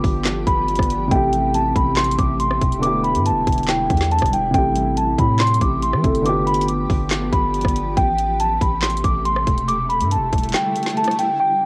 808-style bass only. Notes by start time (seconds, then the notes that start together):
0.04 G1
0.47 G1
0.79 G1
1.11 A1
1.76 A1
2.18 A1
2.61 E1
3.15 G2
3.31 E1
3.47 E1
3.90 E2
4.22 E1
4.54 A1
5.18 A2
5.61 A1
5.93 E3
6.04 G1
6.90 G1
7.33 G1
7.65 G1
7.97 A1
8.61 A1
9.04 A1
9.47 E1
10.01 G2
10.17 E1
10.33 E1